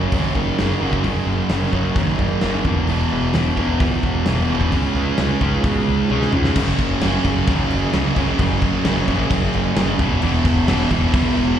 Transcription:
Already playing: F#2 C#3 F#3 A#3 A#4 C#5
0.12 D#2 F#2 C#3 F#3 D#4, kick, open hi-hat
0.35 F#1 A#4, kick
0.58 F#1 F#2 C#3 F#3 D#4, snare, open hi-hat
0.81 F#1 F#2 C#3 F#3 A#4
0.93 kick
1.04 F#1 F#2 C#3 F#3, kick, open hi-hat
1.27 F#1 A#3
1.49 F#1 F#2 C#3 F#3 A#4, snare, open hi-hat
1.73 F#1 F#2 C#3 F#3 C#5, kick
1.95 D#2 F#2 C#3 F#3 D#4, kick, open hi-hat
2.19 F#1 A#4, kick
2.41 F#1 F#2 C#3 F#3 D#4, snare, open hi-hat
2.65 E1 E2 B2 E3, kick
2.88 E1 E2 B2 E3, open hi-hat
3.11 E1 B3
3.33 E1 E2 B2 E3 F#4, snare, open hi-hat
3.57 E1 E2 B2 E3 B4, kick
3.80 C#2 E2 B2 E3 E4, kick, open hi-hat
4.03 E1 F#4, kick
4.26 E1 E2 B2 E3 E4, snare, open hi-hat
4.49 E1 E2 B2 E3 F#4
4.61 kick
4.72 C#2 C#3 G#3 C#4, kick, open hi-hat
4.95 C#2 F3
5.18 C#2 C#3 G#3 C#4 D#4, snare, open hi-hat
5.41 C#2 C#3 G#3 C#4 F4, kick
5.64 B2 C#3 G#3 C#4, kick, open hi-hat
5.87 C#2 D#4
6.10 C#2 C#3 G#3 C#4, high tom
6.22 snare
6.32 C#2 C#3 G#3 C#4 D#4, mid tom
6.44 snare
6.55 F#1 F#2 C#3 F#3 C#4 A#4 D#5, kick, crash
6.78 F#1, kick, crash
7.01 F#1 F#2 C#3 F#3, snare, crash
7.24 F#1 F#2 C#3 F#3, kick, crash
7.46 D#2 F#2 C#3 F#3, kick, crash
7.70 F#1, crash
7.92 C#2 F#2 C#3 F#3, snare, crash
8.16 C#2 F#2 C#3 F#3, kick, crash
8.39 F#1 F#2 C#3 F#3, kick, crash
8.61 kick, crash
8.84 F#1 F#2 C#3 F#3, snare, crash
9.07 A#1 F#2 C#3 F#3, kick, crash
9.30 F#1 F#2 C#3 F#3, kick, crash
9.54 F#1, crash
9.76 F#1 F#2 C#3 F#3, snare, crash
9.98 E1 E2 B2 E3 F#3 E4 B4 E5, kick, crash
10.21 E1 E2 B2 E3, crash
10.45 E1, kick, crash
10.67 E1 E2 B2 E3, snare, crash
10.90 E1 E2 B2 E3, kick, crash
11.13 C#2 E2 B2 E3, kick, crash
11.37 E1, crash

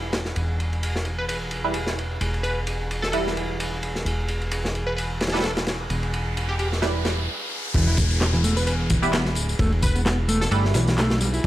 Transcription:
Already playing: E1
0.13 snare, ride
0.25 snare
0.36 E1, ride
0.60 ride
0.73 ride
0.83 ride
0.96 snare
1.05 ride
1.18 B4
1.29 B4, ride
1.51 ride
1.64 G3 E4 B4
1.74 ride
1.87 snare
1.99 ride
2.21 E1, ride
2.34 ride
2.43 B4, ride
2.67 ride
2.91 ride
3.02 A4, snare
3.12 G3 E4 A4 B4, ride
3.27 snare
3.37 ride
3.60 ride
3.83 ride
3.95 snare
4.05 E1, ride, riser
4.28 ride
4.42 ride
4.51 ride
4.65 snare
4.75 ride
4.87 B4
4.97 B4, ride
5.21 snare, ride
5.27 snare, ride
5.32 G3 E4 A4 B4, snare, ride
5.39 A4, snare, ride
5.44 snare, ride
5.57 snare, ride
5.67 snare, ride
5.90 E1, ride
6.03 ride
6.14 ride
6.37 ride
6.49 G4
6.59 G4, ride
6.72 snare
6.82 G3 E4 B4, snare, ride
7.05 snare, ride
7.74 E1 E3, kick, crash, ride, tambourine, downlifter
7.87 E4
7.97 kick, ride, tambourine
8.11 ride, tambourine
8.21 snare, clap, ride, tambourine
8.33 E3, snare
8.44 A3, ride, tambourine
8.57 B4, tambourine
8.67 B4, ride, tambourine
8.90 kick, ride, tambourine
9.02 G3 B3 E4 B4, tambourine
9.13 B3, snare, clap, ride, tambourine
9.25 snare
9.35 D1, ride, tambourine
9.49 tambourine
9.59 E1 A3, kick, ride, tambourine
9.72 ride
9.82 B4, kick, ride, tambourine
9.95 B3, tambourine
10.05 B3, snare, clap, ride, tambourine
10.28 A3, ride, tambourine
10.41 A4, snare, tambourine
10.51 G1 G3 A3 E4 A4 B4, ride, tambourine
10.65 snare
10.74 B1 E3, snare, ride, tambourine
10.87 snare, ride, tambourine
10.98 A3, snare, clap, ride, tambourine
11.10 snare, ride
11.21 G3, ride, tambourine
11.34 E4, tambourine

